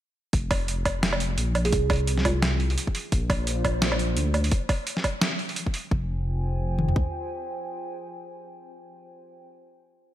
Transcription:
0.33 F1, kick, closed hi-hat
0.51 kick, open hi-hat, low woodblock
0.68 closed hi-hat
0.85 kick, closed hi-hat, low woodblock
1.03 snare, closed hi-hat
1.13 low woodblock
1.20 closed hi-hat
1.38 A#1, closed hi-hat
1.55 closed hi-hat, low woodblock
1.65 G#4, open hi-hat
1.72 C2, kick, closed hi-hat
1.90 kick, open hi-hat, low woodblock
1.93 open hi-hat
1.96 open hi-hat
2.07 closed hi-hat
2.18 snare
2.25 F4, kick, closed hi-hat, low woodblock
2.42 snare, closed hi-hat
2.60 open hi-hat
2.70 open hi-hat
2.78 closed hi-hat
2.87 kick
2.95 open hi-hat
3.11 A#1 A#3 F4 C5 D5, kick, closed hi-hat
3.30 kick, open hi-hat, low woodblock
3.47 closed hi-hat
3.64 kick, closed hi-hat, low woodblock
3.82 snare, closed hi-hat
3.92 low woodblock
3.99 closed hi-hat
4.17 D2, closed hi-hat
4.34 closed hi-hat, low woodblock
4.44 open hi-hat
4.51 kick, closed hi-hat
4.69 kick, open hi-hat, low woodblock
4.87 closed hi-hat
4.97 snare
5.04 kick, closed hi-hat, low woodblock
5.21 snare, closed hi-hat
5.39 open hi-hat
5.49 open hi-hat
5.56 closed hi-hat
5.66 kick
5.74 open hi-hat
5.91 F1 F4 C5 G5 G#5, kick
6.79 mid tom
6.89 floor tom
6.96 kick

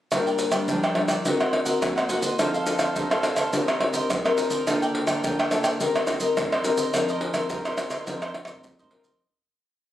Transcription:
0.11 A#2 G3 D4 F4 A#4 D5 G5, pandeiro, tamborim, maracas, surdo
0.26 A#4 D5 G5, pandeiro, maracas
0.39 pandeiro, maracas
0.51 G3 D4 F4 A#4 D5 G5, pandeiro, tamborim, maracas
0.68 F3 D4 A#4 D5 G5, pandeiro, maracas, surdo
0.83 A#4 D5 G5, pandeiro, tamborim, maracas
0.95 G3 D4 F4, pandeiro, tamborim
1.08 A#4 D5 G5, pandeiro, tamborim, maracas
1.25 D#3 C4 F#4 A#4 C5 D#5 F#5, pandeiro, maracas, surdo
1.40 C5 D#5 F#5, pandeiro, tamborim, maracas
1.53 pandeiro, tamborim
1.65 C4 F#4 A#4 C5 D#5 F#5, pandeiro, maracas
1.81 A#2, muted cavaquinho stroke, pandeiro, tamborim, maracas, surdo
1.96 C5 D#5 F#5, pandeiro, tamborim, maracas
2.08 C4 F#4 A#4 C5 D#5 F#5, pandeiro, maracas
2.21 C5 D#5 F#5, pandeiro, maracas
2.38 F3 C4 D#4 A4 C5 F5, pandeiro, tamborim, maracas, surdo
2.54 A4 C5 F5, pandeiro, maracas
2.66 C4 D#4 A4, pandeiro, maracas
2.79 A4 C5 F5, pandeiro, tamborim, maracas
2.95 C3 D#4 A4 C5 F5, pandeiro, maracas, surdo
3.10 C4 D#4 A4 C5 F5, pandeiro, tamborim, maracas
3.23 pandeiro, tamborim, maracas
3.35 A4 C5 F5, pandeiro, tamborim, maracas
3.52 D#3 C4 D#4 G4 A#4 C5 D#5, pandeiro, maracas, surdo
3.67 A#4 C5 D#5, pandeiro, tamborim, maracas
3.80 C4 G4 A#4, muted cavaquinho stroke, pandeiro, tamborim
3.93 A#4 C5 D#5, pandeiro, maracas
4.10 D#3, muted cavaquinho stroke, pandeiro, tamborim, maracas, surdo
4.24 C4 G4 A#4 C5 D#5, pandeiro, tamborim, maracas
4.36 D#4 A#4 C5 D#5, pandeiro, maracas
4.50 A#4 C5 D#5, pandeiro, maracas
4.66 D3 A#3 F4 A4 A#4 D5 G5, pandeiro, tamborim, maracas, surdo
4.82 A#4 D5 G5, pandeiro, maracas
4.95 pandeiro
5.07 A#3 F4 A4 A#4 D5 G5, pandeiro, tamborim, maracas
5.24 D3 F4 A#4 D5 G5, pandeiro, maracas, surdo
5.39 A#4 D5 G5, pandeiro, tamborim, maracas
5.51 A#3 F4 A4, pandeiro, tamborim, maracas
5.64 A#4 D5 G5, pandeiro, tamborim, maracas
5.80 D#3 C4 D#4 G4 A#4 C5 D#5, pandeiro, maracas, surdo
5.96 A#4 C5 D#5, pandeiro, tamborim, maracas
6.07 muted cavaquinho stroke, pandeiro, tamborim, maracas, surdo
6.20 C4 G4 A#4 C5 D#5, pandeiro, maracas
6.37 D#3, pandeiro, tamborim, maracas, surdo
6.52 A#4 C5 D#5, pandeiro, tamborim, maracas
6.64 C4 D#4 G4 A#4 C5 D#5, pandeiro, maracas
6.77 A#4 C5 D#5, pandeiro, maracas
6.94 F3 C4 D#4 F4 A#4 C5 D#5, pandeiro, tamborim, maracas, surdo
7.09 A#4 C5 D#5, pandeiro, maracas
7.21 pandeiro
7.34 C4 D#4 A#4 C5 D#5, pandeiro, tamborim, maracas
7.50 C3 F4 A#4 C5 D#5, pandeiro, maracas, surdo
7.65 A#4 C5 D#5, pandeiro, tamborim, maracas
7.77 C4 D#4 A#4, pandeiro, tamborim, maracas
7.90 A#4 C5 D#5, pandeiro, tamborim, maracas
8.07 F3 C4 D#4 F4 A#4 C5 D#5, pandeiro, maracas, surdo
8.22 A#4 C5 D#5, pandeiro, tamborim, maracas
8.34 muted cavaquinho stroke, pandeiro, tamborim
8.45 C4 D#4 A#4 D#5, pandeiro, tamborim, maracas
8.49 A#4 C5
8.55 surdo
8.64 C3, muted cavaquinho stroke, pandeiro, maracas, surdo
8.79 A#4 C5 D#5, surdo, pandeiro, maracas
8.91 C4 D#4 F4 A#4 C5 D#5, pandeiro
9.02 C5 D#5, pandeiro, maracas, surdo
9.06 A#4
9.12 surdo

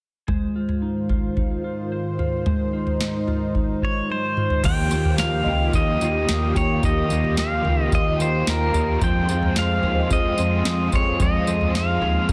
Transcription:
0.28 G#2 D#3 G#3 F4 C5, kick, floor tom
0.56 F4
0.69 floor tom
0.82 D#4
1.09 F4, kick, floor tom
1.37 D#4, kick, floor tom
1.64 F4
1.92 C5
2.19 F4, floor tom
2.46 G#3 D#4 C5, floor tom
2.73 F4
2.87 floor tom
3.00 D#4, snare
3.28 F4, floor tom
3.55 D#4, kick, floor tom
3.82 F4 C#5, kick
4.10 C5, high tom
4.37 F4, mid tom
4.50 floor tom
4.63 D#2 D#3 F3 A#3 F4 G4 G5, kick, floor tom, crash, tambourine
4.67 G4
4.90 D#2 A#3 F4 G4, tambourine
4.96 A#3
5.05 floor tom
5.10 C5
5.18 D#2 F3 A#3 D#4 F5, snare, tambourine
5.22 F4 G4
5.44 C#2 F4 G4 D#5, floor tom
5.49 A#3 G5
5.72 D#2 D#3 F3 A#3 D#4 F4 D#5, kick, floor tom, tambourine
5.76 G4
6.00 D#2 A#3 F4 G4, tambourine
6.06 A#3
6.28 D#2 F3 A#3 D#4 F4, snare, tambourine
6.33 G4
6.55 D#2 A#3 F4 G4 C#5 G5, kick, floor tom, tambourine
6.60 A#3
6.82 D#2 D#3 F3 A#3 F4 G4 D#5, kick, floor tom, tambourine
7.09 D#2 A#3 F4 G4, tambourine
7.15 A#3
7.24 floor tom
7.37 D#2 F3 A#3 D#4 F5, snare, tambourine
7.41 F4 G4
7.64 C#2 F4 G4, floor tom
7.70 A#3
7.84 D#5
7.92 D#2 D#3 F3 A#3 D#4 F4 G4 D#5, kick, floor tom, tambourine
8.10 D#5
8.16 D#2 A#3 G4 G5
8.20 A#3 F4 C5, tambourine
8.46 D#2 F3 A#3 D#4, snare, tambourine
8.50 F4 G4 A#4
8.73 D#2 A#3 F4 G4, floor tom, tambourine
8.79 A#3
9.01 F2 F3 G#3 C4 F4 G#4 G5, kick, floor tom, tambourine
9.05 C5
9.28 F2 C4 G#4 C5, tambourine
9.33 F4
9.43 floor tom
9.55 F2 C4 F4, snare, tambourine
9.59 G#4 C5 F5
9.82 D#2 G#4 C5, floor tom
9.88 F4
9.94 C5
9.99 D#5
10.09 F2 F3 C4 F4 G#4 D#5, kick, floor tom, tambourine
10.14 C5
10.37 F2 C4 G#4 C5, tambourine
10.42 F4
10.64 F2 C4 F4, snare, tambourine
10.68 G#4 C5
10.91 F2 C4 G#4 C5 C#5, kick, floor tom, tambourine
10.97 F4
11.19 F2 F3 C4 F4 G#4 C5 D#5, kick, floor tom, tambourine
11.46 F2 C4 G#4 C5, tambourine
11.52 F4
11.61 floor tom
11.73 F2 C4 D#4 F4, snare, tambourine
11.77 G#4 C5 F5
11.88 F4
12.00 D#2 G#4 C5, floor tom
12.06 F4
12.28 F2 F3 C4 F4, kick, floor tom, tambourine

